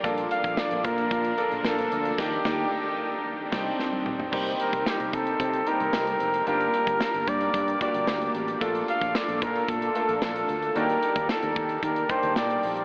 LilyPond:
<<
  \new Staff \with { instrumentName = "Flugelhorn" } { \time 4/4 \key c \dorian \tempo 4 = 112 r8 f''8 d''8 bes'4. a'4 | g'2 r2 | r8 bes'8 g'8 a'4 bes'4. | bes'4. d''4 d''4 r8 |
r8 f''8 d''8 bes'8 a'4 a'4 | bes'4 a'4 bes'8 c''8 d''8. r16 | }
  \new Staff \with { instrumentName = "Analog polysynth" } { \time 4/4 \key c \dorian <bes d' f'>1 | <ees' g' bes'>8 <ees' g' bes'>8 r4. <g ees' g'>8 r4 | <ees' g' c''>1 | <bes d' g'>1 |
<d' f' a'>1 | <bes g' d''>1 | }
  \new Staff \with { instrumentName = "Grand piano" } { \time 4/4 \key c \dorian <bes d' f' a'>4.~ <bes d' f' a'>16 r8. <bes d' f' a'>4. | <bes d' ees' g'>8 <bes d' ees' g'>8 r4. <c' d' ees' g'>8 r4 | <g bes c' ees' g'>4.~ <g bes c' ees' g'>16 r8. <g bes c' ees' g'>4. | <g bes d' f' g'>4.~ <g bes d' f' g'>16 r8. <g bes d' f' fis' g'>4. |
<a bes d' f' a'>4.~ <a bes d' f' a'>16 r8. <a bes d' f' a'>4. | <g bes d' ees' fis' g'>4.~ <g bes d' ees' fis' g'>16 r8. <g bes d' ees' g'>4. | }
  \new Staff \with { instrumentName = "String machine" } { \time 4/4 \key c \dorian <f bes d'>1 | <ees g'>2 <ees c'>2 | r1 | r1 |
r1 | r1 | }
  \new Staff \with { instrumentName = "Fretless electric bass" } { \clef bass \time 4/4 \key c \dorian bes,,8 r16 bes,,16 r16 bes,,16 bes,8 bes,8 r16 bes,,16 bes,,8 d,8 | ees,8 ees,8 r4. c,8 r4 | c,8 r16 c,16 r16 c,16 c8 c8 r16 c,16 c,8 f,,8 | g,,8 r16 g,,16 r16 g,,16 g,8 g,8 r16 g,,16 d,8 a,,8 |
bes,,8 r16 bes,,16 r16 bes,,16 bes,8 bes,8 r16 bes,,16 bes,,8 d,8 | ees,8 r16 ees,16 r16 ees,16 ees8 ees8 r16 ees,16 bes,8 bes,,8 | }
  \new DrumStaff \with { instrumentName = "Drums" } \drummode { \time 4/4 <hh bd>16 hh16 hh16 <hh bd>16 <sn tamb>16 hh16 <hh bd>16 hh16 <hh bd>16 hh16 hh16 hh16 <sn tamb>16 hh16 hh16 hh16 | <cymc bd sn>8 <bd sn>8 r4 r8 <cymc bd sn>8 sn16 tommh16 toml16 tomfh16 | <cymc bd>16 hh16 hh16 <hh bd>16 <sn tamb>16 hh16 <hh bd>16 hh16 <hh bd>16 hh16 hh16 hh16 <sn tamb>16 hh16 hh16 hh16 | hh16 hh16 hh16 <hh bd>16 <sn tamb>16 hh16 <hh bd>16 hh16 <hh bd>16 hh16 <hh bd>16 hh16 <sn tamb>16 hh16 hh16 hh16 |
<hh bd>16 hh16 hh16 <hh bd>16 <sn tamb>16 hh16 <hh bd>16 hh16 <hh bd>16 hh16 hh16 hh16 <sn tamb>16 hh16 hh16 hh16 | hh16 hh16 hh16 <hh bd>16 <sn tamb>16 hh16 <hh bd>16 hh16 <hh bd>16 hh16 <hh bd>16 hh16 <sn tamb>16 hh16 hho16 hh16 | }
>>